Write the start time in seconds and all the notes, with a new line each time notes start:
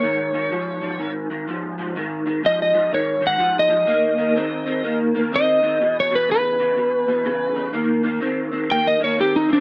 Already playing: C#5
0.03 G#2 D#3
0.33 G#2 D#3
0.51 G#2 F3
0.82 G#2 F3
0.99 G#2 D#3
1.30 G#2 D#3
1.47 G#2 F3
1.78 G#2 F3
1.95 G#2 D#3
2.26 G#2 D#3
2.43 G#2 F3 D#5
2.62 D#5
2.73 G#2 F3
2.91 G#2 D#3 C#5
3.21 G#2 D#3
3.27 F#5
3.38 G#2 F3
3.59 D#5
3.69 G#2 F3
3.86 D#3 A#3
4.17 D#3 A#3
4.35 D#3 C4
4.66 D#3 C4
4.83 D#3 A#3
5.14 D#3 A#3
5.32 D#3 C4 D#5
5.62 D#3 C4
5.80 E2 B2
6.00 C#5
6.10 E2 B2
6.15 B4
6.29 E2 C#3 B4
6.59 E2 C#3
6.76 E2 B2
7.07 E2 B2
7.25 E2 C#3
7.55 E2 C#3
7.73 D#3 A#3
8.03 D#3 A#3
8.21 D#3 C4
8.52 D#3 C4
8.70 D#3 A#3 G5
8.87 D#5
9.00 D#3 A#3
9.04 C#5
9.18 D#3 C4 G4
9.36 D#4
9.48 D#3 C4
9.53 D4